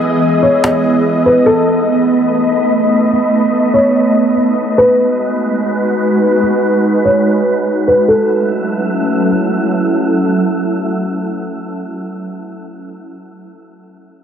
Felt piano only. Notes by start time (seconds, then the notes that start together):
0.43 C#5
1.26 B4
1.46 A4
3.74 C#5
4.78 B4
7.05 C#5
7.88 B4
8.08 A4